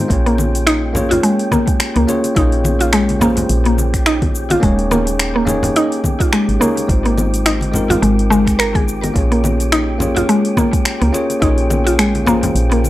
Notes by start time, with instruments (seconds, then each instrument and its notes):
Already playing: tine electric piano G#3 C4 D#4 F4 A#4 C5
0.08 fm bass A#1, tine electric piano A#3 C#4 F4 G#4 C#5, synth texture G4 G5, kick, open hi-hat, shaker
0.26 synth pluck A#3, open hi-hat
0.38 muted conga, low conga, shaker
0.55 open hi-hat, shaker
0.67 synth pluck D#4, finger snap, open hi-hat, shaker
0.93 tine electric piano A#3 C#4 F4 G#4, muted conga, low conga, shaker
0.97 tine electric piano C#5
1.11 synth pluck F4, open hi-hat, low conga, shaker
1.23 synth pluck G#3, open hi-hat, shaker
1.39 open hi-hat
1.51 synth pluck A#3, kick, muted conga, high conga, low conga, shaker
1.67 kick, open hi-hat, shaker
1.80 finger snap, open hi-hat, shaker
1.96 fm bass C#2, synth pluck A#3, open hi-hat
2.07 tine electric piano A#3 C#4 F4 G#4 C#5, muted conga, high conga, shaker
2.24 open hi-hat, muted conga, shaker
2.35 fm bass A#1, tine electric piano A#3 C#4 F4 G#4, synth pluck D#4, kick, open hi-hat, shaker
2.39 tine electric piano C#5
2.52 open hi-hat
2.64 muted conga, low conga, shaker
2.81 synth pluck F4, open hi-hat, shaker
2.93 synth pluck G#3, finger snap, open hi-hat, shaker
3.09 open hi-hat, high conga
3.19 tine electric piano A#3 C#4 F4 G#4, synth pluck A#3, muted conga, low conga, shaker
3.23 tine electric piano C5
3.37 open hi-hat, high conga, low conga, shaker
3.49 fm bass A#1, open hi-hat, shaker
3.65 synth pluck A#3, open hi-hat
3.78 high conga, shaker
3.94 finger snap, kick, open hi-hat, shaker
4.06 synth pluck D#4, finger snap, open hi-hat, shaker
4.22 kick, open hi-hat, low conga
4.35 shaker
4.50 synth pluck F4, open hi-hat, muted conga, low conga, shaker
4.60 fm bass D#1, synth pluck G#3, tine electric piano A#3 C#4 D#4 G#4, kick, open hi-hat, shaker
4.64 tine electric piano C#5
4.79 open hi-hat
4.91 synth pluck A#3, muted conga, low conga, shaker
5.07 open hi-hat, shaker
5.19 finger snap, open hi-hat, shaker
5.36 synth pluck A#3
5.45 tine electric piano A#3 C#4 D#4 G#4 C#5, muted conga, low conga, shaker
5.63 open hi-hat, low conga, shaker
5.76 synth pluck D#4, open hi-hat, shaker
5.92 open hi-hat
6.04 kick, muted conga, high conga, low conga, shaker
6.20 synth pluck F4, kick, open hi-hat, shaker
6.33 synth pluck G#3, finger snap, open hi-hat, shaker
6.49 fm bass G#1, open hi-hat
6.60 tine electric piano A#3 C#4 D#4 G#4 C#5, synth pluck A#3, muted conga, high conga, shaker
6.77 open hi-hat, muted conga, shaker
6.87 fm bass G#1, tine electric piano G#3 C4 D#4 F4, kick, open hi-hat, shaker
6.91 tine electric piano C5
7.05 synth pluck A#3, open hi-hat
7.18 muted conga, low conga, shaker
7.34 open hi-hat, shaker
7.46 synth pluck D#4, finger snap, open hi-hat, shaker
7.61 open hi-hat, high conga
7.72 tine electric piano G#3 C4 D#4 F4 A#4, muted conga, low conga, shaker
7.89 synth pluck F4, open hi-hat, high conga, low conga, shaker
8.02 fm bass G#1, synth pluck G#3, open hi-hat, shaker
8.19 open hi-hat
8.30 synth pluck G#3, high conga, shaker
8.47 finger snap, kick, open hi-hat, shaker
8.59 synth pluck A#4, finger snap, open hi-hat, shaker
8.75 synth pluck G#4, kick, open hi-hat, low conga
8.88 shaker
9.04 open hi-hat, muted conga, low conga, shaker
9.14 fm bass A#1, tine electric piano A#3 C#4 F4 G#4 C#5, kick, open hi-hat, shaker
9.32 synth pluck A#3, open hi-hat
9.44 muted conga, low conga, shaker
9.60 open hi-hat, shaker
9.72 synth pluck D#4, finger snap, open hi-hat, shaker
9.98 tine electric piano A#3 C#4 F4 G#4, muted conga, low conga, shaker
10.02 tine electric piano C#5
10.16 synth pluck F4, open hi-hat, low conga, shaker
10.29 synth pluck G#3, open hi-hat, shaker
10.45 open hi-hat
10.57 synth pluck A#3, kick, muted conga, high conga, low conga, shaker
10.73 kick, open hi-hat, shaker
10.85 finger snap, open hi-hat, shaker
11.02 fm bass C#2, synth pluck A#3, open hi-hat
11.12 tine electric piano A#3 C#4 F4 G#4 C#5, muted conga, high conga, shaker
11.30 open hi-hat, muted conga, shaker
11.40 fm bass A#1, tine electric piano A#3 C#4 F4 G#4 C#5, synth pluck D#4, kick, open hi-hat, shaker
11.58 open hi-hat
11.70 muted conga, low conga, shaker
11.87 synth pluck F4, open hi-hat, shaker
11.99 synth pluck G#3, finger snap, open hi-hat, shaker
12.15 open hi-hat, high conga
12.25 tine electric piano A#3 C#4 F4 G#4 C5, synth pluck A#3, muted conga, low conga, shaker
12.43 open hi-hat, high conga, low conga, shaker
12.55 fm bass A#1, open hi-hat, shaker
12.72 synth pluck A#3, open hi-hat
12.84 high conga, shaker